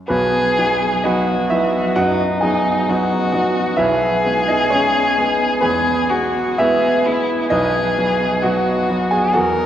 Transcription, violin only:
0.08 1.07 G#4 medium
1.05 1.99 F#4 medium
1.97 2.90 D#4 medium
2.89 3.80 F#4 medium
3.79 5.61 G#4 medium
5.62 6.12 G#4 medium
6.10 6.60 F#4 medium
6.59 7.08 G#4 medium
7.06 7.50 E4 medium
7.51 8.45 G#4 medium
8.43 9.37 F#4 medium
9.35 9.66 A#4 medium

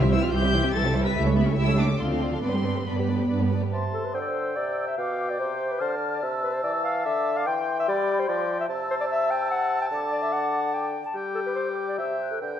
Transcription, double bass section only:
0.00 0.28 C2 medium
0.33 0.69 C2 medium
0.74 1.11 C2 medium
1.16 1.52 C#2 medium
1.57 1.94 C#2 medium
1.99 2.37 D2 medium
2.43 2.81 G2 medium
2.87 3.25 G2 soft
3.30 3.68 G2 medium

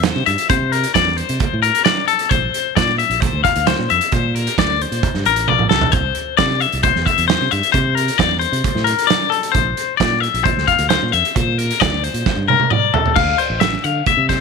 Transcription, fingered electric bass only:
0.00 0.10 E2 medium
0.16 0.24 C3 medium
0.27 0.35 G2 medium
0.50 0.84 C3 medium
0.95 1.21 E2 medium
1.29 1.38 C3 medium
1.53 1.70 A2 medium
2.31 2.48 A#1 medium
2.77 3.03 A#2 medium
3.10 3.27 A#1 medium
3.33 3.41 D2 medium
3.56 3.73 D2 medium
3.79 3.87 A#2 medium
3.91 3.99 F2 medium
4.13 4.47 A#2 medium
4.58 4.84 D2 medium
4.92 5.00 A#2 medium
5.15 5.23 G2 medium
5.26 5.46 A1 medium
5.50 5.69 A#1 medium
5.72 5.91 C2 medium
5.93 6.11 C2 medium
6.39 6.65 C3 medium
6.73 6.90 C2 medium
6.97 7.04 E2 medium
7.18 7.35 E2 medium
7.41 7.49 C3 medium
7.52 7.61 G2 medium
7.75 8.09 C3 medium
8.19 8.45 E2 medium
8.52 8.61 C3 medium
8.75 8.93 A2 medium
9.55 9.72 A#1 medium
10.01 10.26 A#2 medium
10.34 10.51 A#1 medium
10.57 10.65 D2 medium
10.79 10.96 D2 medium
11.03 11.11 A#2 medium
11.13 11.22 F2 medium
11.37 11.71 A#2 medium
11.82 12.07 D2 medium
12.14 12.23 A#2 medium
12.36 12.54 G2 medium
13.16 13.33 D2 medium
13.50 13.76 A1 medium
13.84 14.01 D3 medium
14.17 14.40 C3 medium

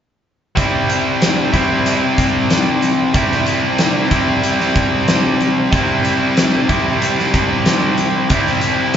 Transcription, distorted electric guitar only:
0.55 1.56 C3 medium
0.55 1.55 G3 medium
0.55 1.54 C4 medium
0.55 1.52 E4 medium
1.53 3.13 C3 medium
1.53 3.14 G3 medium
1.53 3.16 C4 medium
1.53 3.17 E4 medium
3.14 4.14 C3 medium
3.14 4.13 G3 medium
3.14 4.11 C4 medium
3.14 4.10 E4 medium
4.11 5.71 C3 soft
4.11 5.72 G3 medium
4.11 5.74 C4 medium
4.11 5.74 E4 medium
5.71 6.67 C3 medium
5.71 6.71 G3 medium
5.71 6.68 C4 medium
5.71 6.68 E4 medium
6.69 8.29 C3 medium
6.69 8.31 G3 medium
6.69 8.29 C4 medium
6.69 8.28 E4 medium
8.30 8.97 C3 medium
8.30 8.97 G3 medium
8.30 8.97 C4 medium
8.30 8.97 E4 medium

